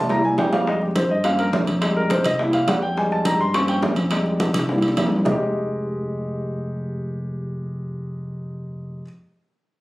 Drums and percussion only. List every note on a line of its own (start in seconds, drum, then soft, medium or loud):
0.09 high bongo medium
0.09 high conga soft
0.09 low timbale medium
0.24 high conga soft
0.38 high bongo medium
0.38 low bongo medium
0.38 high conga medium
0.38 low timbale medium
0.52 high bongo soft
0.52 high conga soft
0.52 low timbale medium
0.67 high bongo medium
0.67 high conga soft
0.82 high conga soft
0.96 high bongo medium
0.96 high conga medium
0.96 high timbale medium
0.96 low timbale medium
1.24 high bongo medium
1.24 high conga soft
1.24 high timbale medium
1.39 high conga soft
1.39 high timbale medium
1.53 high bongo medium
1.53 low bongo medium
1.53 high conga medium
1.53 low timbale medium
1.67 high conga medium
1.67 high timbale medium
1.82 high bongo medium
1.82 high conga soft
1.82 high timbale medium
1.96 high bongo soft
1.96 high conga soft
2.10 high bongo medium
2.10 high conga medium
2.10 high timbale medium
2.10 low timbale medium
2.24 high bongo soft
2.24 high conga medium
2.24 high timbale medium
2.39 high bongo medium
2.39 high conga soft
2.53 high conga soft
2.53 high timbale medium
2.68 high bongo medium
2.68 low bongo medium
2.68 high conga medium
2.68 high timbale medium
2.68 low timbale medium
2.82 high bongo soft
2.82 high conga soft
2.97 high bongo medium
2.97 high conga soft
3.12 high conga soft
3.25 high bongo medium
3.25 high conga medium
3.25 high timbale medium
3.25 low timbale medium
3.54 high bongo medium
3.54 high conga soft
3.54 high timbale medium
3.68 high conga soft
3.68 high timbale medium
3.82 high bongo medium
3.82 low bongo medium
3.82 high conga medium
3.82 low timbale medium
3.96 high conga medium
3.96 high timbale medium
4.11 high bongo medium
4.11 high conga soft
4.11 high timbale medium
4.26 high bongo soft
4.26 high conga soft
4.40 high bongo medium
4.40 high conga medium
4.40 high timbale medium
4.40 low timbale medium
4.54 high conga medium
4.54 high timbale medium
4.59 high bongo medium
4.68 low bongo medium
4.68 high conga soft
4.78 low bongo medium
4.82 high conga soft
4.82 high timbale medium
4.88 low bongo medium
4.97 low bongo medium
4.97 high conga medium
4.97 high timbale medium
4.97 low timbale medium
5.07 low bongo medium
5.12 high conga soft
5.16 low bongo medium
5.25 low bongo medium
5.25 low conga medium
5.25 low timbale medium